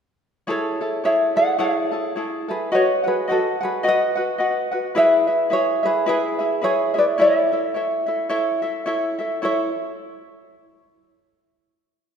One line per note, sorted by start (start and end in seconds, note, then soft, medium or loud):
0.47 0.80 E4 medium
0.47 0.81 G#4 medium
0.47 0.80 A4 medium
0.47 1.01 A4 soft
0.47 0.80 C#5 medium
0.47 1.04 C#5 medium
0.81 1.04 E4 soft
0.81 1.04 G#4 soft
0.81 1.04 A4 soft
1.04 1.36 E4 medium
1.04 1.37 G#4 medium
1.04 1.35 A4 medium
1.04 1.37 C#5 soft
1.04 1.35 C#5 medium
1.04 1.36 E5 medium
1.36 1.58 E4 soft
1.36 1.58 G#4 soft
1.36 1.58 A4 soft
1.36 1.59 D5 medium
1.36 1.59 F#5 medium
1.58 1.91 E4 medium
1.58 1.92 G#4 medium
1.58 1.90 A4 medium
1.58 1.92 C#5 medium
1.58 2.12 C#5 medium
1.58 2.12 E5 medium
1.92 2.15 E4 soft
1.92 2.16 G#4 soft
1.92 2.15 A4 soft
2.16 2.48 E4 medium
2.16 2.49 G#4 medium
2.16 2.47 A4 medium
2.16 2.48 C#5 soft
2.48 2.72 E4 soft
2.48 2.71 G#4 soft
2.48 2.71 G#4 medium
2.48 2.72 A4 soft
2.48 2.71 B4 medium
2.72 3.04 F#4 medium
2.72 3.04 B4 medium
2.72 3.07 C#5 medium
2.72 3.04 D#5 medium
2.72 3.02 F#5 medium
3.04 3.27 F#4 soft
3.04 3.28 G#4 medium
3.04 3.28 B4 soft
3.04 3.27 F#5 soft
3.08 3.30 B4 medium
3.28 3.61 F#4 medium
3.28 3.60 F#4 medium
3.28 3.61 B4 medium
3.28 3.60 D#5 soft
3.28 3.59 F#5 medium
3.32 3.63 A4 medium
3.61 3.83 F#4 soft
3.61 3.83 G#4 medium
3.61 3.83 B4 soft
3.61 3.83 F#5 soft
3.65 3.86 B4 medium
3.83 4.16 F#4 medium
3.83 4.16 B4 medium
3.83 4.70 B4 medium
3.83 4.16 D#5 medium
3.83 4.14 F#5 medium
3.88 4.71 D#5 medium
4.15 4.38 F#4 soft
4.15 4.39 B4 soft
4.15 4.39 F#5 soft
4.38 4.72 F#4 medium
4.38 4.71 B4 medium
4.38 4.72 D#5 medium
4.38 4.70 F#5 medium
4.72 4.95 F#4 soft
4.72 4.94 B4 soft
4.72 4.95 F#5 medium
4.95 5.28 E4 medium
4.95 5.27 G#4 medium
4.95 5.28 B4 medium
4.95 5.49 B4 medium
4.95 5.26 E5 medium
4.95 5.53 E5 medium
5.27 5.49 E4 soft
5.27 5.50 G#4 soft
5.27 5.50 E5 soft
5.50 5.84 E4 medium
5.50 5.83 G#4 medium
5.50 5.83 B4 soft
5.50 5.86 C#5 medium
5.50 5.82 E5 medium
5.54 5.83 G#4 medium
5.83 6.05 E4 soft
5.83 6.06 G#4 soft
5.83 6.07 G#4 medium
5.83 6.08 B4 medium
5.83 6.06 E5 soft
6.06 6.39 E4 medium
6.06 6.39 G#4 medium
6.06 6.61 G#4 medium
6.06 6.39 B4 medium
6.06 6.66 B4 medium
6.06 6.38 E5 medium
6.39 6.61 E4 soft
6.39 6.62 G#4 soft
6.39 6.62 E5 soft
6.61 6.95 E4 medium
6.61 6.94 G#4 medium
6.61 6.95 G#4 medium
6.61 6.95 B4 medium
6.61 6.97 C#5 medium
6.61 6.93 E5 medium
6.94 7.17 E4 soft
6.94 7.18 G#4 soft
6.94 7.18 E5 medium
6.98 7.04 B4 medium
6.98 7.04 D5 medium
7.18 7.52 E4 medium
7.18 7.51 A4 medium
7.18 7.51 C#5 medium
7.18 7.50 E5 medium
7.18 9.17 E5 medium
7.22 9.17 C#5 medium
7.52 7.74 E4 soft
7.52 7.75 A4 soft
7.52 7.74 E5 soft
7.74 8.07 E4 soft
7.74 8.07 A4 medium
7.74 8.06 C#5 soft
7.74 8.05 E5 medium
8.06 8.29 E4 soft
8.06 8.29 A4 soft
8.06 8.29 E5 medium
8.29 8.62 E4 medium
8.29 8.62 A4 medium
8.29 8.62 C#5 medium
8.29 8.61 E5 medium
8.62 8.85 E4 soft
8.62 8.86 A4 soft
8.62 8.85 E5 medium
8.86 9.19 E4 medium
8.86 9.18 A4 medium
8.86 9.18 C#5 medium
8.86 9.17 E5 medium
9.19 9.42 E4 soft
9.19 9.42 A4 medium
9.19 9.41 E5 medium
9.42 9.69 E4 medium
9.42 9.69 A4 medium
9.42 9.68 C#5 medium
9.42 9.74 C#5 medium
9.42 9.70 E5 medium